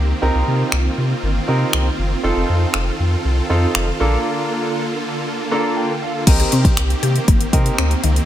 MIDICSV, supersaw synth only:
0, 0, Header, 1, 2, 480
1, 0, Start_track
1, 0, Tempo, 504202
1, 210, Time_signature, 4, 2, 24, 8
1, 7857, End_track
2, 0, Start_track
2, 0, Title_t, "Supersaw synth"
2, 0, Program_c, 0, 81
2, 0, Note_on_c, 0, 51, 75
2, 0, Note_on_c, 0, 58, 69
2, 0, Note_on_c, 0, 60, 72
2, 0, Note_on_c, 0, 67, 89
2, 192, Note_off_c, 0, 67, 0
2, 211, Note_on_c, 0, 65, 84
2, 2091, Note_off_c, 0, 58, 0
2, 2131, Note_on_c, 0, 69, 73
2, 3773, Note_off_c, 0, 51, 0
2, 3773, Note_off_c, 0, 60, 0
2, 3811, Note_on_c, 0, 50, 80
2, 3811, Note_on_c, 0, 58, 72
2, 5932, Note_off_c, 0, 65, 0
2, 5932, Note_off_c, 0, 69, 0
2, 5949, Note_off_c, 0, 50, 0
2, 5949, Note_off_c, 0, 58, 0
2, 5972, Note_on_c, 0, 51, 81
2, 5972, Note_on_c, 0, 60, 74
2, 5973, Note_on_c, 0, 67, 89
2, 7857, Note_off_c, 0, 51, 0
2, 7857, Note_off_c, 0, 60, 0
2, 7857, Note_off_c, 0, 67, 0
2, 7857, End_track
0, 0, End_of_file